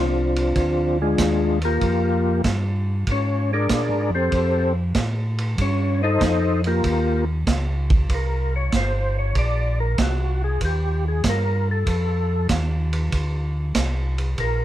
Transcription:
0.00 0.53 C2 medium
0.00 0.98 F3 soft
0.00 0.98 C4 soft
0.00 0.98 D4 soft
0.00 0.98 F4 medium
0.36 ride medium
0.56 1.16 D2 medium
0.56 kick soft
0.56 ride medium
1.02 1.59 G#3 medium
1.02 1.59 D4 medium
1.02 1.59 F4 medium
1.02 1.59 G#4 medium
1.18 1.79 D#2 medium
1.18 kick soft
1.18 snare medium
1.18 hi-hat pedal medium
1.18 ride medium
1.62 2.42 A#3 medium
1.62 2.42 F4 medium
1.62 2.42 G4 medium
1.62 2.42 A#4 medium
1.62 ride soft
1.81 2.42 F2 medium
1.81 kick soft
1.81 ride medium
2.44 3.05 G2 medium
2.44 kick soft
2.44 snare medium
2.44 hi-hat pedal soft
2.44 ride medium
3.07 3.68 G#2 medium
3.07 kick soft
3.07 ride medium
3.11 3.51 C#4 medium
3.11 3.51 C#5 medium
3.53 4.11 D4 medium
3.53 4.10 G#4 medium
3.53 4.11 A#4 medium
3.53 4.11 D5 loud
3.69 3.90 A#2 medium
3.69 kick soft
3.69 snare medium
3.69 hi-hat pedal medium
3.69 ride medium
3.89 4.11 G#2 medium
4.09 4.30 F2 medium
4.15 4.73 C4 medium
4.15 4.73 G4 medium
4.15 4.73 A4 medium
4.15 4.73 C5 medium
4.32 4.93 F2 medium
4.32 kick soft
4.32 ride medium
4.95 5.56 A2 medium
4.95 kick soft
4.95 snare medium
4.95 hi-hat pedal medium
4.95 ride medium
5.38 ride soft
5.57 6.19 G2 medium
5.57 6.02 C#5 medium
5.57 kick soft
5.57 ride medium
5.61 6.02 C#4 medium
6.03 6.61 D#4 medium
6.03 6.62 A4 medium
6.03 6.61 C5 medium
6.03 6.61 D#5 loud
6.20 6.82 F2 loud
6.20 kick soft
6.20 snare medium
6.20 hi-hat pedal medium
6.20 ride medium
6.64 7.24 A#3 medium
6.64 7.25 F4 medium
6.64 7.25 G4 medium
6.64 7.24 A#4 medium
6.64 ride soft
6.83 7.45 D#2 medium
6.83 kick soft
6.83 ride medium
7.47 8.08 C#2 medium
7.47 kick soft
7.47 snare medium
7.47 hi-hat pedal medium
7.47 ride medium
7.90 kick medium
7.90 ride medium
8.09 8.70 C2 medium
8.09 kick soft
8.09 ride medium
8.14 8.54 A#4 medium
8.56 8.73 C#5 loud
8.72 9.33 G1 medium
8.72 kick soft
8.72 snare medium
8.72 hi-hat pedal soft
8.72 ride medium
8.77 9.17 C5 medium
9.19 9.36 C#5 medium
9.35 9.96 A#1 medium
9.35 9.79 D5 loud
9.35 kick soft
9.35 ride medium
9.80 9.98 A#4 medium
9.98 10.59 C2 loud
9.98 kick soft
9.98 snare medium
9.98 hi-hat pedal medium
9.98 ride medium
10.02 10.42 F#4 medium
10.44 10.62 G#4 loud
10.61 11.22 D#2 medium
10.61 kick soft
10.61 ride medium
10.65 11.05 G4 medium
11.08 11.25 G#4 medium
11.24 11.85 G2 medium
11.24 kick soft
11.24 snare medium
11.24 hi-hat pedal medium
11.24 ride medium
11.29 11.69 A#4 loud
11.71 12.48 A4 medium
11.86 12.47 F2 medium
11.86 kick soft
11.86 ride medium
12.49 13.10 D#2 loud
12.49 kick soft
12.49 snare medium
12.49 hi-hat pedal medium
12.49 ride medium
12.93 ride soft
13.12 13.73 D2 medium
13.12 kick soft
13.12 ride medium
13.75 14.36 C2 medium
13.75 kick soft
13.75 snare medium
13.75 hi-hat pedal medium
13.75 ride medium
14.18 ride soft
14.38 14.65 A#1 medium
14.38 14.65 A#4 loud
14.38 kick soft
14.38 ride medium

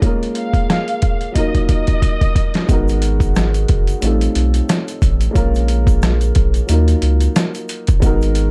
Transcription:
0.00 1.32 G#3 medium
0.00 1.32 A#3 medium
0.00 1.33 C#4 medium
0.00 kick loud
0.00 closed hi-hat medium
0.04 1.34 F4 medium
0.04 1.35 A#4 medium
0.23 closed hi-hat soft
0.35 1.32 F5 medium
0.35 closed hi-hat medium
0.54 kick medium
0.54 closed hi-hat medium
0.70 cross-stick medium
0.70 snare loud
0.70 closed hi-hat medium
0.88 closed hi-hat soft
1.02 kick loud
1.02 closed hi-hat medium
1.21 closed hi-hat soft
1.32 2.65 F#3 medium
1.32 2.65 A#3 medium
1.32 2.66 D#4 medium
1.32 1.66 D#5 medium
1.32 kick soft
1.32 closed hi-hat loud
1.36 2.67 F4 medium
1.36 2.68 A#4 medium
1.55 kick medium
1.55 closed hi-hat medium
1.69 2.65 D#5 medium
1.69 kick medium
1.69 closed hi-hat medium
1.87 kick medium
1.87 closed hi-hat medium
2.02 kick medium
2.02 closed hi-hat loud
2.21 kick medium
2.21 closed hi-hat medium
2.36 kick medium
2.36 closed hi-hat medium
2.54 snare medium
2.54 closed hi-hat medium
2.67 3.65 G#1 loud
2.67 3.99 G#3 medium
2.67 3.99 B3 medium
2.67 4.00 D#4 medium
2.67 kick loud
2.67 closed hi-hat medium
2.67 shaker medium
2.71 4.01 F#4 medium
2.71 4.02 A#4 medium
2.88 closed hi-hat soft
2.88 shaker soft
3.02 closed hi-hat medium
3.02 shaker medium
3.20 kick medium
3.20 closed hi-hat medium
3.20 shaker medium
3.36 cross-stick medium
3.36 snare loud
3.36 closed hi-hat medium
3.36 shaker medium
3.54 closed hi-hat medium
3.54 shaker medium
3.68 3.95 F#1 loud
3.68 kick loud
3.68 closed hi-hat medium
3.87 closed hi-hat soft
3.87 shaker medium
4.00 4.28 A1 loud
4.00 5.32 A2 medium
4.00 5.33 G3 medium
4.00 5.33 C4 medium
4.00 5.34 D#4 medium
4.00 closed hi-hat loud
4.00 shaker medium
4.05 5.34 F4 medium
4.05 5.35 A4 medium
4.21 closed hi-hat medium
4.21 shaker soft
4.35 4.61 B1 medium
4.35 closed hi-hat medium
4.54 closed hi-hat medium
4.54 shaker soft
4.69 cross-stick medium
4.69 snare loud
4.69 closed hi-hat loud
4.69 shaker medium
4.88 closed hi-hat medium
4.88 shaker soft
5.02 5.28 A1 loud
5.02 kick medium
5.02 closed hi-hat medium
5.02 shaker soft
5.21 closed hi-hat medium
5.21 shaker soft
5.31 6.64 G#3 medium
5.31 6.65 A#3 medium
5.31 6.65 C#4 medium
5.35 6.32 A#1 loud
5.35 6.66 F4 medium
5.35 6.67 A#4 medium
5.35 kick loud
5.35 closed hi-hat medium
5.35 shaker medium
5.55 closed hi-hat soft
5.55 shaker soft
5.68 closed hi-hat medium
5.68 shaker medium
5.87 kick medium
5.87 closed hi-hat soft
5.87 shaker soft
6.02 cross-stick medium
6.02 snare loud
6.02 closed hi-hat medium
6.02 shaker medium
6.21 closed hi-hat medium
6.21 shaker medium
6.35 6.61 A#1 loud
6.35 kick loud
6.35 closed hi-hat medium
6.54 closed hi-hat medium
6.54 shaker medium
6.67 6.95 D#2 loud
6.67 7.98 F#3 medium
6.67 7.99 A#3 medium
6.67 8.00 D#4 medium
6.67 closed hi-hat loud
6.67 shaker medium
6.71 8.01 F4 medium
6.71 8.01 A#4 medium
6.88 closed hi-hat medium
6.88 shaker soft
7.02 7.28 C#2 medium
7.02 closed hi-hat medium
7.21 closed hi-hat medium
7.21 shaker soft
7.36 cross-stick medium
7.36 snare loud
7.36 closed hi-hat medium
7.36 shaker medium
7.55 closed hi-hat medium
7.55 shaker soft
7.69 closed hi-hat medium
7.69 shaker soft
7.87 7.99 G1 medium
7.87 kick medium
7.87 closed hi-hat medium
7.87 shaker soft
8.00 8.51 G#1 loud
8.00 8.51 G#3 medium
8.00 8.51 B3 medium
8.00 8.51 D#4 medium
8.00 kick loud
8.00 closed hi-hat loud
8.00 shaker medium
8.04 8.51 F#4 medium
8.04 8.51 A#4 medium
8.22 closed hi-hat soft
8.22 shaker soft
8.35 closed hi-hat medium
8.35 shaker medium

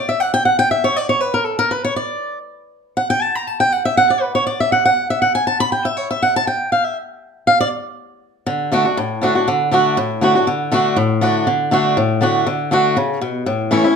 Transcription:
0.09 0.20 E5 medium
0.20 0.33 F#5 medium
0.34 0.45 G5 loud
0.45 0.58 F#5 medium
0.59 0.71 G5 loud
0.71 0.84 E5 medium
0.84 0.96 C#5 loud
0.96 1.09 D5 loud
1.09 1.21 C#5 loud
1.21 1.34 B4 medium
1.34 1.45 A#4 medium
1.45 1.58 A4 medium
1.59 1.71 A#4 loud
1.71 1.84 B4 medium
1.84 1.96 C#5 loud
1.96 2.38 D5 medium
2.97 3.10 F#5 loud
3.10 3.22 G5 loud
3.22 3.35 A5 loud
3.35 3.47 A#5 loud
3.47 3.60 A5 loud
3.60 3.72 G5 loud
3.72 3.85 F#5 medium
3.85 3.97 E5 loud
3.97 4.10 F#5 loud
4.10 4.21 D5 medium
4.21 4.35 B4 medium
4.35 4.46 C#5 medium
4.47 4.60 D5 medium
4.60 4.72 E5 loud
4.72 4.84 F#5 medium
4.85 5.09 F#5 loud
5.10 5.21 E5 loud
5.22 5.35 F#5 medium
5.35 5.47 G#5 loud
5.47 5.60 A5 loud
5.60 5.72 B5 loud
5.72 5.85 G5 medium
5.85 5.97 E5 loud
5.97 6.10 C#5 medium
6.11 6.22 E5 loud
6.22 6.35 F#5 medium
6.36 6.47 A5 loud
6.47 6.71 G5 medium
6.72 6.85 F5 medium
6.85 6.97 E5 loud
7.47 7.60 F5 loud
7.61 7.68 D5 loud
8.46 8.70 D3 medium
8.72 8.85 D3 medium
8.72 8.85 A3 medium
8.72 8.85 D4 loud
8.72 8.84 F#4 loud
8.85 8.98 D4 soft
8.85 8.96 F#4 medium
8.97 9.45 A2 medium
9.22 9.35 D3 medium
9.22 9.35 A3 medium
9.22 9.35 D4 medium
9.22 9.34 F#4 medium
9.35 9.48 D4 medium
9.35 9.47 F#4 medium
9.48 9.70 D3 loud
9.71 9.96 D3 medium
9.71 9.96 A3 medium
9.71 9.97 D4 medium
9.71 9.97 F#4 loud
9.97 10.45 A2 loud
10.21 10.35 D3 medium
10.21 10.35 A3 medium
10.21 10.35 D4 medium
10.21 10.34 F#4 medium
10.35 10.47 D4 medium
10.35 10.47 F#4 medium
10.47 10.70 D3 medium
10.72 10.96 D3 medium
10.72 10.96 A3 loud
10.72 10.96 D4 medium
10.72 10.97 F#4 loud
10.96 11.44 A2 medium
11.21 11.46 D3 medium
11.21 11.46 A3 medium
11.21 11.46 D4 medium
11.21 11.46 F#4 medium
11.47 11.70 D3 medium
11.71 11.95 D3 medium
11.71 11.96 A3 medium
11.71 11.96 D4 medium
11.71 11.97 F#4 loud
11.97 12.45 A2 medium
12.21 12.45 D3 medium
12.21 12.46 A3 medium
12.21 12.46 D4 medium
12.21 12.46 F#4 medium
12.47 12.70 D3 medium
12.71 12.95 D3 medium
12.71 12.96 A3 medium
12.71 12.96 D4 loud
12.71 12.96 F#4 loud
12.97 13.21 C#3 medium
13.21 13.46 B2 medium
13.46 13.94 A2 medium
13.71 13.84 E3 medium
13.71 13.84 A3 medium
13.71 13.85 C#4 loud
13.71 13.83 E4 medium
13.84 13.96 C#4 soft
13.84 13.96 E4 medium

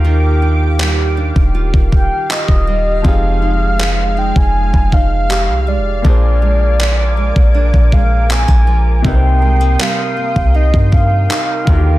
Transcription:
0.00 1.32 D#2 loud
0.00 2.62 D#3 medium
0.00 0.79 A#3 medium
0.00 2.63 A#3 medium
0.00 2.63 F4 medium
0.00 2.64 G4 medium
0.00 3.01 G4 medium
0.00 2.65 F5 medium
0.00 9.01 F5 medium
0.00 3.01 G5 medium
0.00 3.01 D6 loud
0.04 3.07 D#3 medium
0.04 1.54 F4 medium
0.42 1.16 D4 medium
0.80 2.67 G3 medium
0.80 clap loud
1.17 1.92 D4 medium
1.36 1.72 D#1 loud
1.36 kick loud
1.55 2.29 F4 medium
1.74 2.10 D#1 medium
1.74 kick medium
1.92 2.28 G5 loud
1.92 kick medium
2.29 3.42 F4 medium
2.29 3.08 D#5 loud
2.29 clap loud
2.48 3.02 D#1 medium
2.48 kick medium
2.67 3.04 G3 medium
3.02 4.32 F1 loud
3.02 5.99 F3 medium
3.02 6.54 F3 medium
3.02 6.02 G#3 medium
3.02 6.00 C4 medium
3.02 6.01 F4 medium
3.02 4.55 G4 medium
3.02 kick loud
3.06 6.02 D#4 medium
3.06 6.02 G#4 medium
3.06 4.20 F5 loud
3.42 4.16 D#4 medium
3.80 5.67 G#3 medium
3.80 clap loud
4.17 4.91 D#4 medium
4.17 4.39 G5 loud
4.36 4.72 F1 loud
4.36 4.95 G#5 loud
4.36 kick medium
4.74 5.50 F1 loud
4.74 kick medium
4.92 6.05 D#4 medium
4.92 5.70 F5 loud
4.92 kick medium
5.29 6.12 G4 medium
5.29 clap loud
5.48 5.78 C2 medium
5.67 6.42 G#3 medium
5.67 7.95 D5 loud
5.77 6.03 F1 medium
6.02 7.32 A#1 loud
6.02 9.00 A#2 medium
6.02 9.04 A#2 medium
6.02 9.00 A#3 medium
6.02 7.53 D4 medium
6.02 9.01 D4 medium
6.02 11.63 A#4 medium
6.02 9.02 G#5 medium
6.02 9.02 D6 medium
6.02 kick loud
6.07 9.02 G#4 medium
6.07 9.02 C5 medium
6.42 7.16 G#3 medium
6.79 8.66 F3 medium
6.79 clap loud
7.17 7.91 G#3 medium
7.36 7.72 A#1 medium
7.36 kick loud
7.55 8.29 D4 medium
7.74 8.46 A#1 loud
7.74 kick medium
7.92 9.12 G#3 medium
7.92 8.30 F5 medium
7.92 kick medium
8.29 8.48 C4 medium
8.29 9.01 G#5 loud
8.29 clap loud
8.48 9.02 A#1 medium
8.48 9.04 D4 medium
8.48 kick medium
8.67 9.12 F3 medium
9.02 9.77 C2 loud
9.02 11.62 C3 medium
9.02 11.67 C3 medium
9.02 11.63 A#3 medium
9.02 11.63 C4 medium
9.02 10.54 D#4 medium
9.02 11.65 G5 medium
9.02 9.83 G5 loud
9.02 11.65 C6 medium
9.02 11.65 D#6 medium
9.02 kick loud
9.07 11.64 D#4 medium
9.07 9.13 B4 medium
9.15 11.68 C5 medium
9.42 9.61 G#3 medium
9.61 10.16 A#3 medium
9.79 11.98 G3 medium
9.79 10.57 F5 loud
9.79 clap loud
10.17 10.91 A#3 medium
10.36 10.72 C2 loud
10.36 kick loud
10.54 11.29 D#4 medium
10.54 10.93 D#5 loud
10.74 11.28 G2 loud
10.74 kick medium
10.92 11.98 A#3 medium
10.92 11.98 F5 loud
10.92 kick medium
11.30 11.98 D#4 medium
11.30 clap loud
11.65 11.98 D#2 loud
11.65 11.98 D3 medium
11.65 11.98 D#3 medium
11.65 11.98 A#3 medium
11.65 11.98 G4 medium
11.65 11.98 F5 medium
11.65 11.98 A#5 medium
11.65 11.98 D6 medium
11.65 kick loud
11.69 11.98 F4 medium
11.69 11.75 F#4 medium
11.77 11.98 G4 medium

